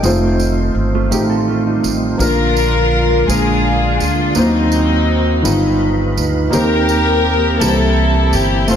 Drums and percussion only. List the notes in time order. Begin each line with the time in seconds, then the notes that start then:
0.04 tambourine
0.40 tambourine
1.12 tambourine
1.84 tambourine
2.20 tambourine
2.57 tambourine
3.30 tambourine
4.00 tambourine
4.35 tambourine
4.72 tambourine
5.45 tambourine
6.17 tambourine
6.53 tambourine
6.89 tambourine
7.61 tambourine
8.33 tambourine
8.68 tambourine